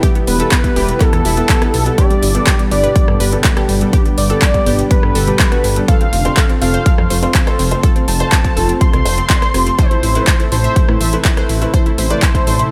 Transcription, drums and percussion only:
0.03 kick loud
0.03 closed hi-hat medium
0.15 closed hi-hat soft
0.27 open hi-hat loud
0.40 closed hi-hat medium
0.51 kick loud
0.51 clap loud
0.51 closed hi-hat medium
0.64 kick medium
0.64 closed hi-hat soft
0.76 open hi-hat medium
0.89 closed hi-hat medium
1.00 kick loud
1.00 clap soft
1.00 closed hi-hat medium
1.13 cross-stick medium
1.13 closed hi-hat soft
1.25 open hi-hat loud
1.37 closed hi-hat medium
1.49 kick loud
1.49 clap loud
1.49 closed hi-hat medium
1.62 cross-stick medium
1.62 closed hi-hat soft
1.74 open hi-hat medium
1.86 closed hi-hat medium
1.98 kick loud
1.98 closed hi-hat medium
2.11 closed hi-hat soft
2.23 open hi-hat loud
2.35 closed hi-hat medium
2.47 kick loud
2.47 clap loud
2.47 closed hi-hat medium
2.59 closed hi-hat soft
2.71 open hi-hat medium
2.84 closed hi-hat medium
2.96 kick loud
2.96 closed hi-hat medium
3.08 cross-stick medium
3.20 open hi-hat loud
3.32 closed hi-hat medium
3.44 kick loud
3.44 clap loud
3.44 closed hi-hat medium
3.57 cross-stick medium
3.57 closed hi-hat soft
3.69 open hi-hat loud
3.81 closed hi-hat medium
3.93 kick loud
3.93 closed hi-hat medium
4.06 closed hi-hat soft
4.18 open hi-hat loud
4.30 closed hi-hat medium
4.42 kick loud
4.42 clap loud
4.42 closed hi-hat medium
4.54 kick medium
4.54 closed hi-hat soft
4.66 open hi-hat loud
4.79 closed hi-hat medium
4.91 kick loud
4.91 closed hi-hat medium
5.03 cross-stick medium
5.15 open hi-hat loud
5.27 closed hi-hat medium
5.39 kick loud
5.39 clap loud
5.39 closed hi-hat medium
5.52 cross-stick medium
5.52 closed hi-hat soft
5.64 open hi-hat loud
5.76 closed hi-hat medium
5.88 kick loud
5.88 closed hi-hat medium
6.01 closed hi-hat soft
6.13 open hi-hat loud
6.25 closed hi-hat medium
6.37 kick loud
6.37 clap loud
6.37 closed hi-hat medium
6.50 closed hi-hat soft
6.62 open hi-hat loud
6.74 closed hi-hat medium
6.86 kick loud
6.86 closed hi-hat medium
6.98 cross-stick medium
7.10 open hi-hat loud
7.23 closed hi-hat medium
7.34 kick loud
7.34 clap loud
7.34 closed hi-hat medium
7.47 cross-stick medium
7.47 closed hi-hat soft
7.59 open hi-hat loud
7.71 closed hi-hat medium
7.83 kick loud
7.83 closed hi-hat medium
7.96 closed hi-hat soft
8.08 open hi-hat loud
8.20 closed hi-hat medium
8.32 kick loud
8.32 clap loud
8.32 closed hi-hat medium
8.45 kick medium
8.45 closed hi-hat soft
8.57 open hi-hat loud
8.69 closed hi-hat medium
8.81 kick loud
8.81 closed hi-hat medium
8.93 cross-stick medium
8.93 closed hi-hat soft
9.06 open hi-hat loud
9.18 closed hi-hat soft
9.30 kick loud
9.30 clap loud
9.30 closed hi-hat medium
9.42 cross-stick medium
9.42 closed hi-hat soft
9.54 cross-stick medium
9.54 open hi-hat loud
9.67 closed hi-hat medium
9.79 kick loud
9.79 closed hi-hat medium
9.91 closed hi-hat soft
10.03 open hi-hat loud
10.15 closed hi-hat medium
10.27 kick loud
10.27 clap loud
10.27 closed hi-hat medium
10.40 closed hi-hat soft
10.52 open hi-hat medium
10.64 closed hi-hat medium
10.76 kick loud
10.76 closed hi-hat medium
10.89 cross-stick medium
11.01 open hi-hat loud
11.13 closed hi-hat soft
11.25 kick loud
11.25 clap loud
11.25 closed hi-hat medium
11.37 cross-stick medium
11.37 closed hi-hat soft
11.49 open hi-hat medium
11.62 closed hi-hat medium
11.74 kick loud
11.74 closed hi-hat medium
11.86 closed hi-hat soft
11.98 open hi-hat loud
12.10 closed hi-hat medium
12.22 kick loud
12.22 clap loud
12.22 closed hi-hat medium
12.35 kick medium
12.35 closed hi-hat soft
12.47 open hi-hat medium
12.59 closed hi-hat medium

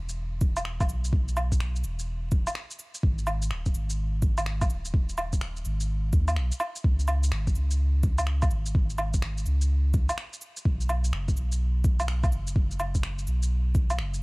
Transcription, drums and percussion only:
0.09 shaker medium
0.41 kick loud
0.41 cabasa medium
0.57 low woodblock medium
0.57 shaker medium
0.65 finger snap loud
0.80 kick loud
0.80 low woodblock medium
0.80 shaker soft
0.89 cabasa medium
1.04 shaker medium
1.13 kick loud
1.28 shaker soft
1.37 cabasa medium
1.37 low woodblock medium
1.52 kick medium
1.52 shaker medium
1.60 finger snap loud
1.76 shaker soft
1.84 cabasa medium
1.99 shaker medium
2.32 kick loud
2.32 cabasa medium
2.47 low woodblock medium
2.47 shaker medium
2.55 finger snap loud
2.71 shaker soft
2.79 cabasa medium
2.95 shaker medium
3.03 kick loud
3.18 shaker soft
3.27 cabasa medium
3.27 low woodblock medium
3.42 shaker medium
3.51 finger snap loud
3.66 kick medium
3.66 shaker soft
3.74 cabasa medium
3.90 shaker medium
4.22 kick loud
4.22 cabasa medium
4.38 low woodblock medium
4.38 shaker medium
4.46 finger snap loud
4.61 kick loud
4.61 low woodblock medium
4.61 shaker soft
4.70 cabasa medium
4.85 shaker medium
4.94 kick loud
5.09 shaker soft
5.18 cabasa medium
5.18 low woodblock medium
5.33 kick medium
5.33 shaker medium
5.41 finger snap loud
5.57 shaker soft
5.65 cabasa medium
5.80 shaker medium
6.13 kick loud
6.13 cabasa medium
6.28 low woodblock medium
6.28 shaker medium
6.36 finger snap loud
6.52 shaker soft
6.60 cabasa medium
6.60 low woodblock medium
6.76 shaker medium
6.84 kick loud
7.00 shaker soft
7.08 cabasa medium
7.08 low woodblock medium
7.23 shaker medium
7.32 finger snap loud
7.47 kick medium
7.47 shaker soft
7.55 cabasa medium
7.71 shaker medium
8.03 kick loud
8.03 cabasa medium
8.18 low woodblock medium
8.18 shaker medium
8.27 finger snap loud
8.42 kick loud
8.42 low woodblock medium
8.42 shaker soft
8.51 cabasa medium
8.66 shaker medium
8.75 kick loud
8.90 shaker soft
8.98 cabasa medium
8.98 low woodblock medium
9.14 kick medium
9.14 shaker medium
9.22 finger snap loud
9.38 shaker soft
9.46 cabasa medium
9.62 shaker medium
9.94 kick loud
9.94 cabasa medium
10.09 low woodblock medium
10.09 shaker medium
10.18 finger snap loud
10.33 shaker soft
10.41 cabasa medium
10.57 shaker medium
10.65 kick loud
10.81 shaker soft
10.89 cabasa medium
10.89 low woodblock medium
11.04 shaker medium
11.13 finger snap loud
11.28 kick medium
11.28 shaker soft
11.37 cabasa medium
11.52 shaker medium
11.84 kick loud
11.84 cabasa medium
12.00 low woodblock medium
12.00 shaker medium
12.08 finger snap loud
12.24 kick loud
12.24 low woodblock medium
12.24 shaker soft
12.32 cabasa medium
12.47 shaker medium
12.56 kick loud
12.71 shaker soft
12.80 cabasa medium
12.80 low woodblock soft
12.95 kick medium
12.95 shaker medium
13.03 finger snap loud
13.19 shaker soft
13.27 cabasa medium
13.43 shaker medium
13.75 kick loud
13.75 cabasa medium
13.90 low woodblock soft
13.90 shaker medium
13.99 finger snap loud
14.14 shaker soft

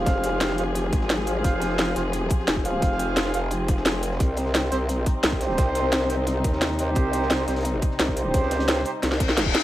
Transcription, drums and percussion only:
0.06 kick loud
0.06 snare loud
0.06 closed hi-hat medium
0.23 snare medium
0.23 closed hi-hat medium
0.40 snare loud
0.40 closed hi-hat medium
0.50 snare soft
0.50 closed hi-hat soft
0.58 closed hi-hat medium
0.75 closed hi-hat medium
0.93 kick loud
0.93 closed hi-hat medium
1.01 snare soft
1.10 snare loud
1.10 closed hi-hat medium
1.19 snare medium
1.27 closed hi-hat medium
1.44 kick loud
1.44 closed hi-hat medium
1.44 closed hi-hat loud
1.62 snare medium
1.62 closed hi-hat medium
1.70 snare medium
1.78 snare loud
1.78 closed hi-hat medium
1.95 snare medium
1.95 closed hi-hat medium
2.13 closed hi-hat medium
2.30 kick loud
2.30 closed hi-hat medium
2.40 snare soft
2.48 snare loud
2.48 closed hi-hat medium
2.56 kick medium
2.65 closed hi-hat medium
2.82 kick loud
2.82 closed hi-hat medium
2.92 snare soft
2.99 snare soft
2.99 closed hi-hat medium
3.17 snare loud
3.17 closed hi-hat medium
3.25 snare soft
3.25 closed hi-hat soft
3.34 closed hi-hat medium
3.51 closed hi-hat medium
3.68 kick loud
3.68 closed hi-hat medium
3.77 snare medium
3.86 snare loud
3.86 closed hi-hat medium
3.94 snare medium
4.03 snare soft
4.03 closed hi-hat medium
4.11 snare soft
4.20 kick loud
4.20 closed hi-hat medium
4.37 snare soft
4.37 closed hi-hat medium
4.45 snare soft
4.55 snare loud
4.55 closed hi-hat medium
4.72 snare medium
4.72 closed hi-hat medium
4.89 closed hi-hat medium
5.06 kick loud
5.06 closed hi-hat medium
5.23 snare loud
5.23 closed hi-hat medium
5.32 kick medium
5.41 snare soft
5.41 closed hi-hat medium
5.49 snare soft
5.57 kick loud
5.57 snare loud
5.57 closed hi-hat medium
5.75 snare soft
5.75 closed hi-hat medium
5.92 snare loud
5.92 closed hi-hat medium
6.01 snare soft
6.01 closed hi-hat soft
6.10 closed hi-hat medium
6.27 closed hi-hat medium
6.44 kick loud
6.44 closed hi-hat medium
6.53 snare medium
6.61 snare loud
6.61 closed hi-hat medium
6.70 snare soft
6.79 closed hi-hat medium
6.95 kick loud
6.95 closed hi-hat medium
7.13 snare medium
7.13 closed hi-hat loud
7.13 closed hi-hat medium
7.22 snare medium
7.30 snare loud
7.30 closed hi-hat medium
7.48 snare loud
7.48 closed hi-hat medium
7.56 snare medium
7.56 closed hi-hat medium
7.61 snare medium
7.61 closed hi-hat medium
7.65 closed hi-hat medium
7.82 kick loud
7.82 closed hi-hat medium
7.91 snare soft
7.99 snare loud
7.99 closed hi-hat medium
8.08 kick medium
8.17 closed hi-hat medium
8.34 kick loud
8.34 closed hi-hat medium
8.43 snare soft
8.51 snare loud
8.51 closed hi-hat medium
8.59 snare loud
8.59 closed hi-hat medium
8.68 snare loud
8.68 closed hi-hat medium
8.77 snare soft
8.77 closed hi-hat soft
8.85 closed hi-hat medium
8.85 closed hi-hat loud
9.03 snare medium
9.03 closed hi-hat medium
9.12 snare medium
9.20 kick loud
9.20 closed hi-hat medium
9.29 snare medium
9.29 snare soft
9.37 snare loud
9.37 snare medium
9.37 closed hi-hat medium
9.46 kick medium
9.46 snare soft
9.55 snare loud
9.55 closed hi-hat loud
9.55 closed hi-hat medium

